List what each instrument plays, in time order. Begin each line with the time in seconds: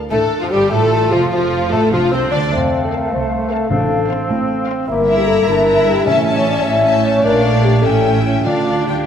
Already playing: french horn section A#4
0.11 double bass section A1, cello section A2, viola section A3, bassoon A3, clarinet D4, violin section A4, french horn section A4, flute section A4
0.41 cello section F2, viola section F3, bassoon F3, violin section F4, french horn section F4, flute section F4
0.51 double bass section G1, cello section G2, viola section G3, bassoon G3, french horn section G4, violin section G4, flute section G4
0.71 double bass section A1, cello section A2, bassoon A3, viola section A3, clarinet F4, french horn section A4, violin section A4, flute section A4
1.11 double bass section F1, cello section F2, bassoon F3, viola section F3, violin section F4, french horn section F4, flute section F4
1.31 double bass section F1, cello section F2, viola section F3, bassoon F3, violin section F4, flute section F4, french horn section F4
1.71 double bass section A1, cello section A2, viola section A3, bassoon A3, violin section A4, french horn section A4, flute section A4
1.92 double bass section F1, cello section F2, bassoon F3, viola section F3, clarinet D4, violin section F4, french horn section F4, flute section F4
2.11 double bass section C2, cello section C3, bassoon C4, viola section C4, violin section C5, flute section C5, french horn section C5
2.31 double bass section D2, cello section D3, viola section D4, bassoon D4, flute section D5, french horn section D5, violin section D5
2.52 double bass section F1, cello section F2, bassoon A3, clarinet C4, french horn section C5, flute section F5
2.84 french horn section A4
2.92 viola section C4, french horn section A#4, violin section F5 A5
3.11 cello section C2, double bass section C2, clarinet A3, french horn section C5
3.50 viola section C4, french horn section A4, violin section F5 A5
3.69 double bass section A1, timpani A2, cello section A2, bassoon C4, clarinet D4, french horn section A4
4.08 viola section C4, violin section F5 C6
4.29 double bass section A1, cello section A2, clarinet C4
4.68 viola section C4, violin section F5 C6
4.88 double bass section G1, cello section G2, clarinet A#3, bassoon E4, french horn section A#4, flute section E5
5.07 viola section E4, violin section E5 A#5
5.18 french horn section G4
5.26 french horn section A4
5.46 double bass section G1, cello section G2, clarinet D4, french horn section A#4
5.68 viola section E4, violin section E5 A#5
5.88 french horn section G4
6.06 double bass section A1, cello section A2, timpani A2, bassoon C#4, viola section C#4, clarinet C#4, violin section E5 A5, french horn section E5
6.26 viola section C#4, violin section E5 A5
6.37 french horn section C#5
6.47 french horn section D5
6.64 double bass section A1, cello section A2, clarinet A3, french horn section E5
6.84 viola section C#4, violin section E5 A5
7.05 french horn section C#5
7.24 double bass section A#1, cello section A#2, bassoon D4, viola section D4, french horn section A#4, violin section D5 F5, flute section F5
7.45 french horn section A4
7.63 french horn section G4
7.82 double bass section A1, cello section A2, clarinet C#4, bassoon C#4, viola section C#4, french horn section A4, violin section E5 G5, flute section G5
8.22 french horn section E4
8.44 double bass section D2, cello section D3, timpani D3, clarinet D4, bassoon D4, viola section D4, french horn section F4, violin section D5 F5, flute section F5
8.85 french horn section G3, violin section G4 G5